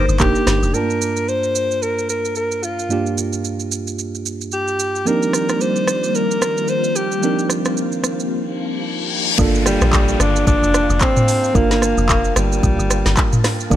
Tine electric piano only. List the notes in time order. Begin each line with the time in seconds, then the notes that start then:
Already playing: A#3 D4 D#4 A#4
0.20 A#3 D4 D#4 A#4
0.73 G2 A3 D4 F4 A5
0.80 A#3
2.89 G2 A#3 D4 F4 G4
5.05 F3 A#3 C4 D4 D#4 G4
7.21 F3 A#3 C4 D4 D#4 A#4
9.38 A#3 D4 F4 A4
11.54 A#3 D4 F4 A#4
13.70 D#3 A#3 D4